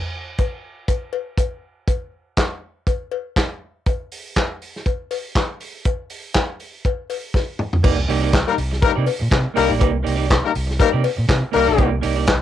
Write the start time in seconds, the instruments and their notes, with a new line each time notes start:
0.38 kick, closed hi-hat, cowbell
0.88 kick, closed hi-hat, cowbell
1.13 cowbell
1.38 kick, closed hi-hat, cowbell
1.88 kick, closed hi-hat, cowbell
2.37 kick, snare, clap, closed hi-hat, cowbell
2.87 kick, closed hi-hat, cowbell
3.12 cowbell
3.36 kick, snare, clap, closed hi-hat, cowbell
3.86 kick, closed hi-hat, cowbell
4.12 open hi-hat
4.36 kick, snare, clap, closed hi-hat, cowbell
4.62 open hi-hat
4.76 snare
4.86 kick, closed hi-hat, cowbell
5.11 open hi-hat, cowbell
5.35 kick, snare, clap, closed hi-hat, cowbell
5.60 open hi-hat
5.85 kick, closed hi-hat, cowbell
6.10 open hi-hat
6.34 kick, snare, clap, closed hi-hat, cowbell
6.60 open hi-hat
6.85 kick, closed hi-hat, cowbell
7.10 open hi-hat, cowbell
7.34 kick, snare, cowbell
7.59 mid tom
7.73 floor tom
7.83 fingered electric bass C2, clean electric guitar A#3 D#4 G4 D5, kick, crash, cowbell
7.97 muted clean electric guitar stroke
8.08 fingered electric bass C2, clean electric guitar A#3 D#4 G4 D5, open hi-hat
8.22 clean electric guitar A#3 D#4 G4 D5
8.33 muted clean electric guitar stroke, kick, snare, clap, closed hi-hat, cowbell
8.47 horn section G3 A#3 D#4 A#4, muted clean electric guitar stroke
8.58 fingered electric bass C2, open hi-hat
8.71 muted clean electric guitar stroke, snare
8.82 horn section G3 A#3 D#4 A#4, muted clean electric guitar stroke, muted fingered electric bass stroke, kick, closed hi-hat, cowbell
8.96 fingered electric bass C3, clean electric guitar A#3 D#4 G4 D5
9.06 muted clean electric guitar stroke, open hi-hat, cowbell
9.19 fingered electric bass A#2, muted clean electric guitar stroke
9.30 fingered electric bass C3, muted clean electric guitar stroke, kick, snare, clap, closed hi-hat, cowbell
9.44 muted clean electric guitar stroke
9.54 fingered electric bass C2, horn section G3 A#3 D#4 A#4, clean electric guitar A#3 D#4 G4 D5, open hi-hat
9.68 fingered electric bass A#1, clean electric guitar A#3 D#4 G4 D5
9.79 fingered electric bass C2, clean electric guitar A#3 D#4 G4 D5, kick, closed hi-hat, cowbell
9.92 muted clean electric guitar stroke
10.03 fingered electric bass C2, clean electric guitar A#3 D#4 G4 D5, open hi-hat
10.16 clean electric guitar A#3 D#4 G4 D5
10.28 muted clean electric guitar stroke, kick, snare, clap, closed hi-hat, cowbell
10.42 horn section G3 A#3 D#4 A#4, muted clean electric guitar stroke
10.55 fingered electric bass C2, open hi-hat
10.67 muted clean electric guitar stroke, snare
10.79 horn section G3 A#3 D#4 A#4, muted clean electric guitar stroke, muted fingered electric bass stroke, kick, closed hi-hat, cowbell
10.92 fingered electric bass C3, clean electric guitar A#3 D#4 G4 D5
11.03 muted clean electric guitar stroke, open hi-hat, cowbell
11.17 fingered electric bass A#2, muted clean electric guitar stroke
11.28 fingered electric bass C3, muted clean electric guitar stroke, kick, snare, clap, closed hi-hat, cowbell
11.42 muted clean electric guitar stroke
11.52 fingered electric bass C2, horn section G3 A#3 D#4 A#4, clean electric guitar A#3 D#4 G4 D5, open hi-hat
11.66 fingered electric bass A#1, clean electric guitar A#3 D#4 G4 D5
11.77 fingered electric bass C2, clean electric guitar A#3 D#4 G4 D5, kick, closed hi-hat, cowbell
11.91 muted clean electric guitar stroke
12.01 fingered electric bass C2, clean electric guitar A#3 D#4 G4 D5, open hi-hat
12.16 clean electric guitar A#3 D#4 G4 D5
12.27 muted clean electric guitar stroke, kick, snare, clap, closed hi-hat, cowbell